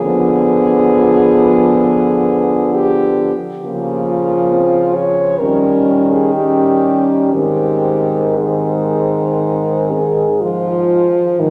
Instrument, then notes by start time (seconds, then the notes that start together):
french horn
Already playing: G#4
0.04 D3 F3 B3
2.74 G4
3.62 C#3 F3 A#3 F4
4.52 C4
4.95 C#5
5.39 D#3 G3 C#4 A#4
6.11 G#4
6.33 G3 C#4 G4
7.34 G#2 D#3 C4 G4
8.38 D#3 C4 G#4
9.91 G#4
10.42 F3 F4
11.39 G#2 D#3 D#4 C5